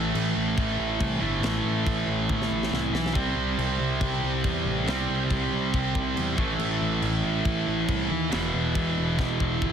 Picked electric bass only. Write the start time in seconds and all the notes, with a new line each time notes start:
Already playing: A1
0.15 A1
0.36 A1
0.57 A1
0.79 A1
1.01 C2
1.22 G1
1.43 A1
1.64 A1
1.87 A1
2.06 A1
2.30 A1
2.51 A1
2.72 C2
2.93 B1
3.16 C2
3.35 C2
3.58 C2
3.80 C2
4.02 C2
4.23 C2
4.45 E2
4.66 A1
4.88 C2
5.09 C2
5.31 C2
5.53 C2
5.75 C2
5.95 C2
6.17 E2
6.38 A1
6.59 A1
6.81 A1
7.02 A1
7.25 A1
7.45 A1
7.67 A1
7.89 C2
8.11 D#2
8.34 E1
8.54 E1
8.76 E1
8.98 E1
9.19 E1
9.40 E1
9.62 G1